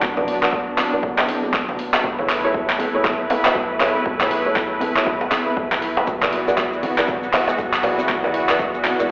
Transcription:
Already playing: analog synth pad F#3 B3 D4, felt piano D4 F#4 B4 D5
0.02 808-style bass B1, kick, clap
0.17 felt piano D4 F#4 B4 D5, mid tom, djembe slap
0.27 kalimba B3, open hi-hat
0.43 felt piano D4 F#4 B4 D5, kalimba F#4, clap
0.53 kick
0.78 808-style bass F#1, kalimba E4, clap, open hi-hat, djembe tone
0.93 kalimba B3, felt piano D4 F#4 B4 D5
1.03 kick, mid tom
1.18 kalimba B3, clap, djembe slap
1.28 808-style bass F#1, kalimba E4, open hi-hat, djembe tone
1.43 kalimba A3, djembe tone
1.54 kick, clap
1.69 mid tom, djembe slap
1.79 kalimba B3, open hi-hat
1.93 kalimba F#4, clap, djembe slap
2.04 808-style bass B1, analog synth pad A3 E4 B4, kick
2.19 felt piano E4 G#4 A4 C#5, mid tom, djembe slap
2.29 kalimba E4, clap, open hi-hat
2.44 kalimba B3, felt piano E4 G#4 A4 C#5
2.54 kick
2.70 kalimba B3, clap
2.78 808-style bass F#1, kalimba E4, open hi-hat, djembe tone
2.95 kalimba A3, felt piano E4 G#4 A4 C#5
3.04 808-style bass F#1, kick, clap, mid tom, djembe tone
3.30 kalimba B3, open hi-hat, djembe slap, djembe tone
3.45 kalimba F#4, clap, djembe slap
3.55 808-style bass B1, kick
3.80 kalimba E4, felt piano E4 G#4 A4 C#5, clap, open hi-hat, djembe slap
3.95 kalimba B3, djembe tone
4.06 808-style bass B1, kick
4.21 kalimba B3, felt piano E4 G#4 A4 C#5, kick, clap, mid tom, djembe slap
4.31 kalimba E4, open hi-hat
4.46 kalimba A3, felt piano E4 G#4 A4 C#5
4.56 kick, clap
4.80 808-style bass F#1, kalimba B3, open hi-hat, djembe tone
4.96 felt piano E4 G#4 A4 C#5, kalimba F#4, clap
5.06 kick, mid tom
5.21 djembe slap
5.31 808-style bass F#1, kalimba E4, clap, open hi-hat, djembe tone
5.46 kalimba B3, djembe tone
5.57 808-style bass B1, kick
5.71 kalimba B3, clap, mid tom, djembe slap
5.82 kalimba E4, open hi-hat
5.97 kalimba A3, djembe slap
6.07 808-style bass B1, analog synth pad E3 B3 F#4, kick, muted conga, high conga, maracas
6.21 felt piano E4 G#4 B4 D5, clap, mid tom, djembe slap, maracas
6.32 kalimba B3, open hi-hat, muted conga
6.47 felt piano E4 G#4 B4 D5, kalimba F#4, maracas
6.58 kick, clap, muted conga, maracas
6.73 maracas
6.83 808-style bass F#1, kalimba E4, open hi-hat, djembe tone, high conga
6.98 felt piano E4 G#4 B4 D5, kalimba F#4, clap, muted conga, maracas
7.08 808-style bass F#1, kick, mid tom, djembe tone, low conga, maracas
7.23 kalimba B3, muted conga, maracas
7.33 kalimba E4, clap, open hi-hat, djembe slap, djembe tone
7.48 kalimba G#3, djembe slap, muted conga, maracas
7.58 808-style bass B1, kick, maracas
7.73 clap, muted conga, maracas
7.83 kalimba B3, felt piano E4 G#4 B4 D5, open hi-hat, djembe slap, low conga
7.98 kalimba F#4, djembe tone, maracas
8.08 808-style bass B1, kick, clap, muted conga, high conga, maracas
8.24 felt piano E4 G#4 B4 D5, mid tom, djembe slap, maracas
8.34 kalimba E4, open hi-hat, muted conga
8.49 felt piano E4 G#4 B4 D5, kalimba F#4, clap, maracas
8.59 kick, muted conga, maracas
8.74 kalimba B3, maracas
8.84 808-style bass F#1, kalimba E4, clap, open hi-hat, high conga, djembe tone
8.99 kalimba G#3, felt piano E4 G#4 B4 D5, muted conga, maracas

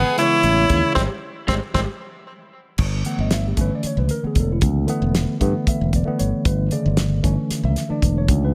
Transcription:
Already playing: tenor saxophone B3, overdriven electric guitar G#4
0.17 tine electric piano C#3 E3 G#3 B3, tenor saxophone E4, overdriven electric guitar C#5, snare, closed hi-hat
0.43 fingered electric bass A1, closed hi-hat
0.69 fingered electric bass D#2, tine electric piano C#3 E3 G#3 C#4, kick, snare, closed hi-hat
0.95 fingered electric bass G#1, tine electric piano D#3 G3 G#3, tenor saxophone C4, overdriven electric guitar G4 G#4 C5, kick, snare
1.47 fingered electric bass G#1, tine electric piano D#3 G3 G#3, tenor saxophone C4, overdriven electric guitar G4 G#4 C5, kick, snare
1.74 fingered electric bass G#1, tine electric piano D#3 G3 G#3, tenor saxophone C4, overdriven electric guitar G4 G#4 C5, kick, snare
2.78 fingered electric bass G1, kick, crash
3.05 tine electric piano D3 E3 A3 B3 F#5, closed hi-hat
3.19 fingered electric bass G1, tine electric piano D#5
3.31 tine electric piano E5, snare, closed hi-hat
3.48 tine electric piano G4
3.56 fingered electric bass G1, tine electric piano D3 E3 A3 C#4, kick, closed hi-hat
3.61 tine electric piano B4
3.75 tine electric piano D5
3.83 tine electric piano C#5, muted fingered electric bass stroke, closed hi-hat
3.97 fingered electric bass C#2, tine electric piano B4
4.09 tine electric piano A#4, closed hi-hat
4.22 tine electric piano D3 E3 A3 B3, muted fingered electric bass stroke
4.27 tine electric piano G#4
4.35 fingered electric bass E1, kick, closed hi-hat
4.40 tine electric piano A4
4.52 tine electric piano E4
4.61 fingered electric bass C#2, kick, closed hi-hat
4.87 tine electric piano D3 E3 A3 B3, closed hi-hat
5.02 fingered electric bass E1
5.15 snare, closed hi-hat
5.40 fingered electric bass G2, tine electric piano D3 E3 A3 B3, kick, closed hi-hat
5.67 tine electric piano E5, muted fingered electric bass stroke, kick, closed hi-hat
5.81 fingered electric bass E1
5.93 tine electric piano D5, kick, closed hi-hat
6.05 tine electric piano D3 E3 A3 B3, muted fingered electric bass stroke
6.19 fingered electric bass G1, tine electric piano C#5, closed hi-hat
6.45 fingered electric bass G1, tine electric piano B4, kick, closed hi-hat
6.71 tine electric piano C#3 D3 E3 A3 D5, closed hi-hat
6.86 fingered electric bass G1
6.97 snare, closed hi-hat
7.22 fingered electric bass G1, tine electric piano D3 E3 A3 C#4, kick, closed hi-hat
7.51 muted fingered electric bass stroke, snare, closed hi-hat
7.63 fingered electric bass C#2, tine electric piano E5
7.76 snare, closed hi-hat
7.88 tine electric piano D3 E3 A3 D4 D5, muted fingered electric bass stroke
8.02 fingered electric bass E1, kick, closed hi-hat
8.18 tine electric piano C#5
8.28 fingered electric bass C#2, kick, closed hi-hat
8.45 tine electric piano B4

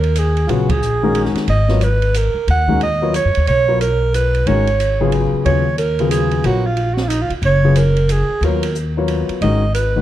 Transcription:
Already playing: upright bass D#2, alto saxophone A#4
0.04 ride
0.16 alto saxophone G#4, hi-hat pedal, ride
0.37 ride
0.47 upright bass A#1, grand piano C#3 F#3 B3 F4 G#4, alto saxophone F4 F#4, ride
0.69 alto saxophone G#4, kick, ride
0.82 hi-hat pedal
1.03 grand piano D#3 G#3 C#4 F#4 A#4
1.15 ride
1.25 snare
1.35 muted upright bass stroke, snare, ride
1.48 upright bass G#1, alto saxophone D#5, ride
1.68 grand piano F#3 B3 F4 A#4 C#5, snare
1.81 alto saxophone B4, hi-hat pedal, ride
2.02 ride
2.14 alto saxophone A#4, hi-hat pedal, ride
2.34 muted upright bass stroke
2.47 upright bass D#2, alto saxophone F#5, ride
2.68 grand piano D#3 G#3 C#4 F#4 A#4, kick
2.81 alto saxophone D#5, ride
3.02 grand piano F#3 B3 F4 A#4 C#5
3.14 alto saxophone C#5, hi-hat pedal, ride
3.25 upright bass F#2
3.35 upright bass D#2, ride
3.47 upright bass B1, alto saxophone C#5, ride
3.68 grand piano F#3 B3 F4 A#4 C#5
3.81 alto saxophone A#4, hi-hat pedal, ride
4.14 alto saxophone B4, hi-hat pedal, ride
4.34 ride
4.46 upright bass G#1, grand piano D#3 G#3 C#4 F#4 A#4, alto saxophone C#5, ride
4.67 ride
4.80 hi-hat pedal, ride
5.01 grand piano C#3 F#3 B3 F4 G#4
5.12 ride
5.33 muted upright bass stroke
5.45 upright bass D#2, grand piano C#3 F#3 B3 F4 G#4, alto saxophone C#5, ride
5.78 alto saxophone A#4, hi-hat pedal, ride
5.99 grand piano C#3 F#3 B3 F4 G#4, ride
6.11 alto saxophone G#4, hi-hat pedal, ride
6.31 ride
6.44 upright bass A#1, grand piano F#3 B3 F4 A#4 C#5, alto saxophone F#4, ride
6.66 alto saxophone F4
6.77 ride
6.94 alto saxophone F#4, snare
7.03 alto saxophone F4
7.08 alto saxophone D#4, hi-hat pedal, ride
7.21 alto saxophone F4
7.30 muted upright bass stroke, ride
7.42 upright bass F#1, alto saxophone C#5, ride
7.64 grand piano C#3 F#3 B3 F4 G#4
7.76 alto saxophone A#4, hi-hat pedal, ride
7.97 ride
8.09 alto saxophone G#4, hi-hat pedal, ride
8.41 upright bass D#2, grand piano F#3 B3 F4 A#4 C#5, alto saxophone A#4, ride
8.63 ride
8.75 hi-hat pedal
8.97 grand piano F#3 B3 F4 A#4 C#5
9.08 ride
9.29 muted upright bass stroke, ride
9.41 upright bass G#1, grand piano D#3 G#3 C#4 F#4 A#4, alto saxophone D#5, ride
9.74 alto saxophone B4, hi-hat pedal, ride
9.96 grand piano D#3 G#3 C#4 F#4 B4

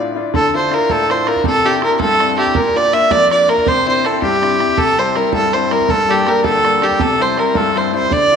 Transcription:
Already playing: upright piano A2
0.00 upright piano D4 E4 F4
0.16 upright piano D4 E4 F4
0.34 upright piano D3, fiddle A4, bodhran
0.54 upright piano D4 E4 F4, fiddle C5
0.71 upright piano D4 E4 F4, fiddle A#4, bodhran
0.89 upright piano A2, fiddle A4, bodhran
1.09 upright piano D4 E4 F4, fiddle C5, bodhran
1.27 upright piano D4 E4 F4, fiddle A#4, bodhran
1.36 bodhran
1.44 upright piano C3, fiddle A4, bodhran
1.65 upright piano C4 D4 E4, fiddle G4
1.82 upright piano C4 D4 E4, fiddle A#4, bodhran
1.99 upright piano G2, fiddle A4, bodhran
2.20 upright piano C4 D4 E4, bodhran
2.37 upright piano C4 D4 E4, fiddle G4, bodhran
2.47 bodhran
2.55 upright piano A#2, fiddle A#4, bodhran
2.75 upright piano A#3 D4 F4, fiddle D5
2.93 upright piano A#3 D4 F4, fiddle E5, bodhran
3.11 upright piano F2, fiddle D5, bodhran
3.31 upright piano A#3 D4 F4, fiddle D5, bodhran
3.49 upright piano A#3 D4 F4, fiddle A#4, bodhran
3.58 bodhran
3.66 upright piano C3, fiddle C5, bodhran
3.86 upright piano C4 D4 E4, fiddle C5
4.05 upright piano C4 D4 E4, fiddle A4, bodhran
4.22 upright piano G2, fiddle G4, bodhran
4.42 upright piano C4 D4 E4, bodhran
4.59 upright piano C4 D4 E4, bodhran
4.69 bodhran
4.77 upright piano C3, fiddle A4, bodhran
4.98 upright piano G3 C4 E4, fiddle C5
5.15 upright piano G3 C4 E4, fiddle A#4, bodhran
5.33 upright piano G2, fiddle A4, bodhran
5.53 upright piano G3 C4 E4, fiddle C5, bodhran
5.71 upright piano G3 C4 E4, fiddle A#4, bodhran
5.80 bodhran
5.88 upright piano G2, fiddle A4, bodhran
6.09 upright piano G3 A#3 D4, fiddle G4
6.26 upright piano G3 A#3 D4, fiddle A#4, bodhran
6.44 upright piano D2, fiddle A4, bodhran
6.64 upright piano G3 A#3 D4, bodhran
6.82 upright piano G3 A#3 D4, fiddle G4, bodhran
6.91 bodhran
6.99 upright piano C3, fiddle A4, bodhran
7.19 upright piano G3 C4 E4, fiddle C5
7.37 upright piano G3 C4 E4, fiddle A#4, bodhran
7.55 upright piano G2, fiddle A4, bodhran
7.76 upright piano G3 C4 E4, fiddle C5, bodhran
7.93 upright piano G3 C4 E4, fiddle C5
8.02 bodhran
8.10 upright piano D3, fiddle D5, bodhran
8.31 upright piano D4 E4 F4

